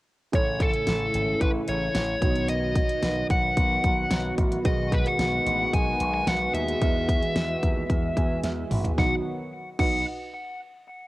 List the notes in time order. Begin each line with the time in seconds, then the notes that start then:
0.32 A1 A2 C#3 E3 A3 E4 A4 C#5 G#5, kick, closed hi-hat
0.60 A4, kick, closed hi-hat
0.73 closed hi-hat
0.87 A1, snare, closed hi-hat
1.14 G#1, closed hi-hat
1.41 A1 B4, kick, closed hi-hat
1.68 A1 C#5, closed hi-hat
1.95 A1, snare, closed hi-hat
2.21 B1 B2 D#3 F#3 B3 D#4 F#4 B4 C#5, kick, closed hi-hat
2.30 D#5
2.36 closed hi-hat
2.49 D#5, closed hi-hat
2.76 kick, closed hi-hat
2.90 closed hi-hat
3.03 B1, snare, closed hi-hat
3.30 B1 F#5, kick, closed hi-hat
3.57 B1, kick, closed hi-hat
3.84 B1, kick, closed hi-hat
4.11 B1, snare, closed hi-hat
4.38 A1, kick, closed hi-hat
4.52 closed hi-hat
4.64 B1 B2 D#3 G#3 F#4 G#4 B4 D#5, kick, closed hi-hat
4.92 B4, kick, closed hi-hat
5.06 F#5, closed hi-hat
5.19 B1, snare, closed hi-hat
5.46 A1, closed hi-hat
5.73 B1 G#5, kick, closed hi-hat
6.00 B1, closed hi-hat
6.14 G#5
6.27 B1 F#5, snare, closed hi-hat
6.54 D#2 E5, closed hi-hat
6.68 closed hi-hat
6.80 E2 E3 F#4 G#4 B4 E5, kick, closed hi-hat
7.09 kick, closed hi-hat
7.22 closed hi-hat
7.35 E2, snare, closed hi-hat
7.63 D#2, kick, closed hi-hat
7.90 E2, kick, closed hi-hat
8.17 E2 G#5, kick, closed hi-hat
8.43 E2 E5, snare, closed hi-hat
8.71 A1, mid tom, open hi-hat
8.85 closed hi-hat, floor tom
8.97 B1 D#3 F#3 B3 D#4 F#4 B4 D#5 F#5, kick, snare
9.79 B1 D#4 F#4 B4 D#5 F#5, kick, crash